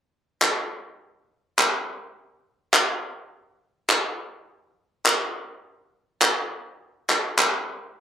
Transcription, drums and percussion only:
0.42 clap medium
1.59 clap medium
2.74 clap medium
3.90 clap medium
5.06 clap medium
6.22 clap medium
7.10 clap medium
7.39 clap medium

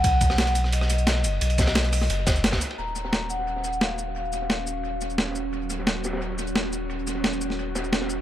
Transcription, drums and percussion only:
0.04 kick loud
0.04 closed hi-hat loud
0.04 ride loud
0.21 kick loud
0.21 closed hi-hat medium
0.21 ride medium
0.21 shaker medium
0.30 cross-stick soft
0.30 snare medium
0.38 snare loud
0.38 closed hi-hat medium
0.38 ride medium
0.47 closed hi-hat soft
0.55 closed hi-hat medium
0.55 ride medium
0.55 shaker medium
0.64 cross-stick soft
0.64 snare soft
0.72 closed hi-hat loud
0.72 ride medium
0.81 cross-stick soft
0.81 snare soft
0.90 closed hi-hat medium
0.90 ride medium
0.90 shaker medium
0.98 closed hi-hat soft
0.98 shaker soft
1.07 snare loud
1.07 closed hi-hat loud
1.07 ride medium
1.24 closed hi-hat medium
1.24 ride medium
1.24 shaker medium
1.41 closed hi-hat loud
1.41 ride medium
1.50 closed hi-hat soft
1.50 ride soft
1.58 kick loud
1.58 snare loud
1.58 closed hi-hat medium
1.58 ride medium
1.58 shaker medium
1.67 cross-stick soft
1.67 snare medium
1.67 ride medium
1.75 snare loud
1.75 closed hi-hat loud
1.75 ride medium
1.84 closed hi-hat soft
1.93 cross-stick soft
1.93 open hi-hat medium
1.93 ride medium
1.93 shaker medium
2.02 cross-stick soft
2.02 snare soft
2.10 closed hi-hat loud
2.10 ride medium
2.27 kick loud
2.27 snare loud
2.27 closed hi-hat medium
2.27 ride medium
2.27 shaker medium
2.36 closed hi-hat soft
2.36 shaker soft
2.44 snare loud
2.44 closed hi-hat medium
2.44 ride medium
2.52 kick medium
2.52 cross-stick soft
2.52 snare loud
2.52 ride medium
2.61 closed hi-hat medium
2.61 shaker medium
2.70 ride medium
2.79 ride medium
2.95 ride medium
2.95 shaker medium
3.05 snare soft
3.12 snare loud
3.12 ride medium
3.30 ride medium
3.30 shaker medium
3.39 snare soft
3.47 ride medium
3.56 snare soft
3.64 ride medium
3.64 shaker medium
3.73 shaker soft
3.81 snare loud
3.81 ride medium
3.98 ride medium
3.98 shaker soft
4.16 ride medium
4.24 ride soft
4.33 ride medium
4.33 shaker medium
4.42 snare soft
4.50 snare loud
4.50 ride medium
4.67 ride medium
4.67 shaker medium
4.83 ride medium
5.01 ride medium
5.01 shaker medium
5.10 ride soft
5.10 shaker soft
5.18 snare loud
5.18 ride medium
5.27 snare soft
5.35 ride medium
5.35 shaker soft
5.53 ride medium
5.70 ride medium
5.70 shaker medium
5.79 snare soft
5.87 snare loud
5.87 ride medium
6.04 snare medium
6.04 ride medium
6.04 shaker medium
6.12 snare medium
6.12 ride medium
6.17 snare medium
6.17 ride medium
6.22 ride medium
6.30 snare soft
6.38 ride medium
6.38 shaker medium
6.47 shaker soft
6.56 snare loud
6.56 ride medium
6.73 ride medium
6.73 shaker soft
6.89 ride medium
6.98 ride soft
7.07 ride medium
7.07 shaker medium
7.15 snare soft
7.24 snare loud
7.24 ride medium
7.33 shaker soft
7.41 ride medium
7.41 shaker medium
7.50 snare soft
7.59 ride medium
7.75 snare medium
7.75 ride medium
7.75 shaker medium
7.84 shaker soft
7.92 snare loud
7.92 ride soft
8.01 snare medium
8.01 ride medium
8.10 shaker soft
8.18 ride soft

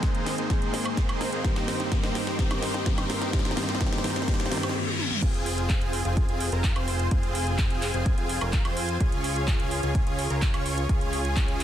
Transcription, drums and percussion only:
0.03 kick loud
0.03 snare medium
0.03 closed hi-hat medium
0.15 closed hi-hat soft
0.26 snare medium
0.26 open hi-hat medium
0.38 closed hi-hat soft
0.50 kick loud
0.50 snare medium
0.50 closed hi-hat medium
0.62 closed hi-hat soft
0.74 snare medium
0.74 open hi-hat loud
0.86 closed hi-hat soft
0.86 high woodblock medium
0.97 kick loud
0.97 snare medium
0.97 closed hi-hat medium
1.09 closed hi-hat soft
1.09 high woodblock medium
1.21 snare medium
1.21 open hi-hat medium
1.33 closed hi-hat soft
1.44 kick loud
1.44 snare medium
1.44 closed hi-hat medium
1.56 snare medium
1.56 closed hi-hat soft
1.68 snare medium
1.68 open hi-hat loud
1.80 snare medium
1.80 closed hi-hat soft
1.92 kick loud
1.92 snare medium
1.92 closed hi-hat medium
2.03 snare medium
2.03 closed hi-hat soft
2.15 snare medium
2.15 open hi-hat medium
2.27 snare medium
2.27 closed hi-hat soft
2.39 kick loud
2.39 snare loud
2.39 closed hi-hat medium
2.51 snare medium
2.51 closed hi-hat soft
2.51 high woodblock medium
2.62 snare loud
2.62 open hi-hat loud
2.74 snare medium
2.86 kick loud
2.86 snare loud
2.86 closed hi-hat medium
2.98 snare medium
2.98 closed hi-hat soft
2.98 high woodblock medium
3.10 snare loud
3.10 open hi-hat medium
3.22 snare medium
3.22 closed hi-hat soft
3.33 kick loud
3.33 snare loud
3.33 closed hi-hat medium
3.39 snare medium
3.45 snare loud
3.45 closed hi-hat soft
3.51 snare medium
3.57 snare loud
3.57 open hi-hat loud
3.63 snare medium
3.69 snare loud
3.69 closed hi-hat soft
3.75 snare medium
3.81 kick loud
3.81 snare loud
3.81 closed hi-hat medium
3.87 snare medium
3.93 snare medium
3.93 closed hi-hat soft
3.98 snare loud
4.04 snare loud
4.04 open hi-hat medium
4.10 snare medium
4.16 snare loud
4.16 closed hi-hat soft
4.22 snare medium
4.28 kick loud
4.28 snare loud
4.28 closed hi-hat medium
4.34 snare loud
4.40 snare loud
4.40 closed hi-hat soft
4.46 snare loud
4.51 snare loud
4.51 open hi-hat loud
4.57 snare medium
4.63 snare loud
4.63 closed hi-hat soft
4.63 high woodblock medium
4.69 snare loud
4.75 high tom medium
4.87 high tom medium
4.99 mid tom medium
5.11 mid tom medium
5.22 kick loud
5.22 closed hi-hat medium
5.22 crash loud
5.34 closed hi-hat soft
5.46 open hi-hat loud
5.58 closed hi-hat soft
5.70 kick loud
5.70 clap loud
5.70 closed hi-hat medium
5.81 closed hi-hat soft
5.93 open hi-hat loud
6.05 closed hi-hat soft
6.17 kick loud
6.17 closed hi-hat medium
6.29 closed hi-hat soft
6.40 open hi-hat loud
6.52 closed hi-hat soft
6.64 kick loud
6.64 clap loud
6.64 closed hi-hat medium
6.76 closed hi-hat soft
6.76 high woodblock medium
6.88 open hi-hat loud
6.99 closed hi-hat soft
7.11 kick loud
7.11 closed hi-hat medium
7.23 closed hi-hat soft
7.35 open hi-hat loud
7.47 closed hi-hat soft
7.59 kick loud
7.59 clap loud
7.59 closed hi-hat medium
7.70 closed hi-hat soft
7.82 clap medium
7.82 open hi-hat loud
7.94 closed hi-hat soft
8.06 kick loud
8.06 closed hi-hat medium
8.18 closed hi-hat soft
8.29 open hi-hat loud
8.41 closed hi-hat soft
8.41 high woodblock medium
8.53 kick loud
8.53 clap loud
8.53 closed hi-hat medium
8.65 closed hi-hat soft
8.65 high woodblock medium
8.77 open hi-hat loud
8.89 closed hi-hat soft
9.00 kick loud
9.00 closed hi-hat medium
9.12 closed hi-hat soft
9.24 open hi-hat loud
9.36 closed hi-hat soft
9.48 kick loud
9.48 clap loud
9.48 closed hi-hat medium
9.60 closed hi-hat soft
9.71 open hi-hat loud
9.83 closed hi-hat soft
9.95 kick loud
9.95 closed hi-hat medium
10.07 closed hi-hat soft
10.19 open hi-hat loud
10.30 closed hi-hat soft
10.42 kick loud
10.42 clap loud
10.42 closed hi-hat medium
10.54 closed hi-hat soft
10.54 high woodblock medium
10.66 open hi-hat loud
10.78 closed hi-hat soft
10.89 kick loud
10.89 closed hi-hat medium
11.01 closed hi-hat soft
11.13 open hi-hat loud
11.25 closed hi-hat soft
11.37 kick loud
11.37 clap loud
11.37 closed hi-hat medium
11.48 closed hi-hat soft
11.60 clap medium
11.60 open hi-hat loud

